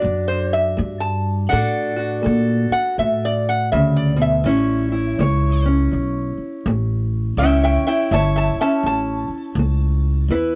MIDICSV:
0, 0, Header, 1, 5, 480
1, 0, Start_track
1, 0, Tempo, 732601
1, 995, Time_signature, 4, 2, 24, 8
1, 6914, End_track
2, 0, Start_track
2, 0, Title_t, "Resonator guitar played with a steel bar"
2, 0, Program_c, 0, 25
2, 0, Note_on_c, 0, 74, 87
2, 183, Note_on_c, 0, 72, 74
2, 185, Note_off_c, 0, 74, 0
2, 343, Note_off_c, 0, 72, 0
2, 348, Note_on_c, 0, 76, 86
2, 658, Note_on_c, 0, 81, 80
2, 662, Note_off_c, 0, 76, 0
2, 976, Note_on_c, 0, 78, 100
2, 977, Note_off_c, 0, 81, 0
2, 1275, Note_off_c, 0, 78, 0
2, 1784, Note_on_c, 0, 78, 106
2, 1947, Note_off_c, 0, 78, 0
2, 1959, Note_on_c, 0, 76, 80
2, 2115, Note_off_c, 0, 76, 0
2, 2129, Note_on_c, 0, 74, 76
2, 2280, Note_off_c, 0, 74, 0
2, 2286, Note_on_c, 0, 78, 93
2, 2434, Note_off_c, 0, 78, 0
2, 2437, Note_on_c, 0, 76, 74
2, 2594, Note_off_c, 0, 76, 0
2, 2598, Note_on_c, 0, 74, 74
2, 2755, Note_off_c, 0, 74, 0
2, 2763, Note_on_c, 0, 76, 91
2, 3696, Note_off_c, 0, 76, 0
2, 4836, Note_on_c, 0, 76, 86
2, 4841, Note_on_c, 0, 79, 98
2, 4995, Note_off_c, 0, 76, 0
2, 4995, Note_off_c, 0, 79, 0
2, 5003, Note_on_c, 0, 76, 80
2, 5010, Note_on_c, 0, 79, 88
2, 5147, Note_off_c, 0, 76, 0
2, 5151, Note_off_c, 0, 79, 0
2, 5155, Note_on_c, 0, 76, 70
2, 5159, Note_on_c, 0, 79, 85
2, 5304, Note_off_c, 0, 76, 0
2, 5313, Note_off_c, 0, 79, 0
2, 5319, Note_on_c, 0, 76, 69
2, 5330, Note_on_c, 0, 81, 87
2, 5466, Note_off_c, 0, 76, 0
2, 5476, Note_on_c, 0, 76, 74
2, 5479, Note_off_c, 0, 81, 0
2, 5487, Note_on_c, 0, 81, 84
2, 5624, Note_off_c, 0, 76, 0
2, 5636, Note_off_c, 0, 81, 0
2, 5641, Note_on_c, 0, 76, 77
2, 5644, Note_on_c, 0, 81, 90
2, 5787, Note_off_c, 0, 76, 0
2, 5794, Note_off_c, 0, 81, 0
2, 5807, Note_on_c, 0, 81, 104
2, 6728, Note_off_c, 0, 81, 0
2, 6914, End_track
3, 0, Start_track
3, 0, Title_t, "Steel-string acoustic guitar"
3, 0, Program_c, 1, 25
3, 0, Note_on_c, 1, 62, 57
3, 0, Note_on_c, 1, 66, 63
3, 0, Note_on_c, 1, 69, 62
3, 12, Note_on_c, 1, 45, 68
3, 467, Note_off_c, 1, 45, 0
3, 504, Note_on_c, 1, 57, 72
3, 954, Note_off_c, 1, 57, 0
3, 965, Note_off_c, 1, 62, 0
3, 965, Note_off_c, 1, 66, 0
3, 981, Note_on_c, 1, 50, 76
3, 990, Note_on_c, 1, 62, 64
3, 994, Note_on_c, 1, 66, 65
3, 996, Note_off_c, 1, 69, 0
3, 999, Note_on_c, 1, 69, 70
3, 1278, Note_off_c, 1, 66, 0
3, 1286, Note_on_c, 1, 66, 60
3, 1434, Note_off_c, 1, 50, 0
3, 1458, Note_on_c, 1, 57, 67
3, 1466, Note_off_c, 1, 69, 0
3, 1469, Note_on_c, 1, 69, 68
3, 1773, Note_off_c, 1, 62, 0
3, 1913, Note_off_c, 1, 57, 0
3, 1971, Note_on_c, 1, 45, 59
3, 2410, Note_off_c, 1, 45, 0
3, 2441, Note_on_c, 1, 49, 69
3, 2726, Note_off_c, 1, 49, 0
3, 2729, Note_on_c, 1, 47, 65
3, 2896, Note_off_c, 1, 66, 0
3, 2906, Note_off_c, 1, 47, 0
3, 2908, Note_on_c, 1, 45, 77
3, 2920, Note_on_c, 1, 61, 67
3, 2927, Note_on_c, 1, 64, 67
3, 2928, Note_off_c, 1, 69, 0
3, 2931, Note_on_c, 1, 73, 65
3, 3220, Note_off_c, 1, 64, 0
3, 3223, Note_on_c, 1, 64, 64
3, 3359, Note_off_c, 1, 45, 0
3, 3406, Note_on_c, 1, 57, 72
3, 3407, Note_off_c, 1, 73, 0
3, 3410, Note_on_c, 1, 73, 72
3, 3703, Note_off_c, 1, 61, 0
3, 3706, Note_on_c, 1, 61, 58
3, 3848, Note_off_c, 1, 57, 0
3, 3877, Note_on_c, 1, 52, 61
3, 4322, Note_off_c, 1, 52, 0
3, 4374, Note_on_c, 1, 57, 73
3, 4809, Note_off_c, 1, 57, 0
3, 4821, Note_off_c, 1, 61, 0
3, 4822, Note_off_c, 1, 73, 0
3, 4851, Note_on_c, 1, 45, 74
3, 4856, Note_on_c, 1, 61, 69
3, 4861, Note_off_c, 1, 64, 0
3, 4863, Note_on_c, 1, 64, 63
3, 4864, Note_on_c, 1, 73, 69
3, 5160, Note_off_c, 1, 64, 0
3, 5163, Note_on_c, 1, 64, 62
3, 5287, Note_off_c, 1, 45, 0
3, 5326, Note_off_c, 1, 73, 0
3, 5328, Note_on_c, 1, 57, 66
3, 5334, Note_on_c, 1, 73, 77
3, 5621, Note_off_c, 1, 61, 0
3, 5640, Note_on_c, 1, 61, 61
3, 5764, Note_off_c, 1, 57, 0
3, 5809, Note_on_c, 1, 52, 62
3, 6243, Note_off_c, 1, 52, 0
3, 6284, Note_on_c, 1, 57, 68
3, 6718, Note_off_c, 1, 57, 0
3, 6735, Note_off_c, 1, 73, 0
3, 6740, Note_off_c, 1, 61, 0
3, 6749, Note_off_c, 1, 64, 0
3, 6752, Note_on_c, 1, 52, 82
3, 6757, Note_on_c, 1, 64, 66
3, 6760, Note_on_c, 1, 71, 68
3, 6914, Note_off_c, 1, 52, 0
3, 6914, Note_off_c, 1, 64, 0
3, 6914, Note_off_c, 1, 71, 0
3, 6914, End_track
4, 0, Start_track
4, 0, Title_t, "Upright bass"
4, 0, Program_c, 2, 32
4, 29, Note_on_c, 2, 42, 83
4, 498, Note_off_c, 2, 42, 0
4, 514, Note_on_c, 2, 43, 95
4, 981, Note_off_c, 2, 43, 0
4, 1001, Note_on_c, 2, 45, 76
4, 1466, Note_off_c, 2, 45, 0
4, 1480, Note_on_c, 2, 46, 93
4, 1756, Note_off_c, 2, 46, 0
4, 1953, Note_on_c, 2, 45, 79
4, 2423, Note_off_c, 2, 45, 0
4, 2442, Note_on_c, 2, 38, 87
4, 2908, Note_off_c, 2, 38, 0
4, 2919, Note_on_c, 2, 33, 80
4, 3386, Note_off_c, 2, 33, 0
4, 3400, Note_on_c, 2, 37, 94
4, 3867, Note_off_c, 2, 37, 0
4, 3884, Note_on_c, 2, 35, 80
4, 4159, Note_off_c, 2, 35, 0
4, 4362, Note_on_c, 2, 33, 104
4, 4826, Note_off_c, 2, 33, 0
4, 4830, Note_on_c, 2, 37, 87
4, 5110, Note_off_c, 2, 37, 0
4, 5315, Note_on_c, 2, 31, 95
4, 5591, Note_off_c, 2, 31, 0
4, 5787, Note_on_c, 2, 33, 76
4, 6066, Note_off_c, 2, 33, 0
4, 6259, Note_on_c, 2, 37, 93
4, 6728, Note_off_c, 2, 37, 0
4, 6738, Note_on_c, 2, 40, 79
4, 6914, Note_off_c, 2, 40, 0
4, 6914, End_track
5, 0, Start_track
5, 0, Title_t, "Muted upright bass strokes"
5, 1773, Note_on_c, 9, 29, 43
5, 1838, Note_off_c, 9, 29, 0
5, 4176, Note_on_c, 9, 29, 44
5, 4242, Note_off_c, 9, 29, 0
5, 5131, Note_on_c, 9, 29, 38
5, 5197, Note_off_c, 9, 29, 0
5, 5605, Note_on_c, 9, 29, 44
5, 5671, Note_off_c, 9, 29, 0
5, 6083, Note_on_c, 9, 29, 41
5, 6149, Note_off_c, 9, 29, 0
5, 6914, End_track
0, 0, End_of_file